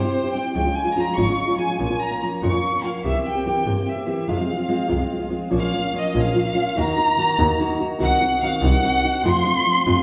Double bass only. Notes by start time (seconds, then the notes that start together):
0.56 C#2
1.18 G#1
1.81 A#1
2.43 F2
3.05 C2
3.66 G2
4.28 F2
4.91 C2
5.53 A#1
6.16 A#1
6.78 D#2
7.39 D#2
8.01 C2
8.62 C2
9.24 F2
9.87 F2